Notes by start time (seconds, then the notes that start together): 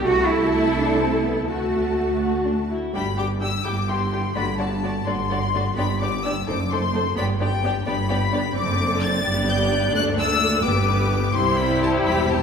0.06 C2 A3 E4 F#4 A4 A5
0.29 E4
0.76 D4
1.00 C4
1.24 B3
1.41 B3
1.49 D2 A3 F#4 A5
2.21 F#4
2.45 D4
2.69 E4
2.94 G1 G2 G3 D4 G4 G5 B5
3.17 G3 D4 G4 G5 D6
3.41 G3 D4 G4 G5 E6
3.64 G1 G2 G3 E4 G4 G5 D6
3.88 G3 E4 G4 G5 C6
4.12 G3 E4 G4 G5
4.35 G1 G2 A3 D4 F#4 D5 B5
4.59 A3 D4 F#4 D5 A5
4.83 A3 D4 F#4 D5
5.06 G1 G2 A3 D4 F#4 D5 C6
5.30 A3 D4 F#4 D5
5.54 A3 D4 F#4 D5
5.76 G1 G2 B3 D4 G4 D5 B5
6.00 B3 D4 G4 D5 D6
6.24 B3 D4 G4 D5 E6
6.46 F#1 F#2 A3 D#4 A4 C5 D6
6.70 A3 D#4 A4 C5 C6
6.93 A3 D#4 A4 C5
7.16 G1 G2 B3 D4 G4 D5 B5
7.40 B3 D4 G4 D5 G5
7.63 B3 D4 G4 D5
7.86 G1 G2 B3 D4 G4 D5 B5
8.09 B3 D4 G4 D5
8.33 B3 D4 G4 D5
8.56 F#1 F#2 C4 D4 A4 D5 D6
9.02 A6
9.25 G1 G2 B3 G4
9.48 G6
9.95 D2 A3 A4 F#6
10.19 E6
10.64 G1 G2 B3 G4 B4 D6
11.34 C2 G3 E4 G4 C5 C6
11.59 B5
11.82 A5
12.05 E1 E2 B5
12.29 A5